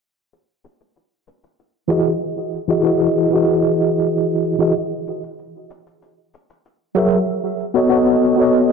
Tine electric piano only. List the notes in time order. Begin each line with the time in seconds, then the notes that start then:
1.88 E3 E4 F#4 G#4 D#5
2.68 E3 E4 F#4 G#4 D#5
2.83 E3 E4 F#4 G#4 D#5
3.30 E3 E4 F#4
3.35 G#4 D#5
4.59 E3 E4 F#4 G#4 D#5
6.95 F#3 F#4 G#4 A#4 E5
7.74 B3 F#4 A4 C#5 D#5
7.89 B3 F#4 A4 C#5 D#5
8.36 B3 F#4 A4
8.40 C#5 D#5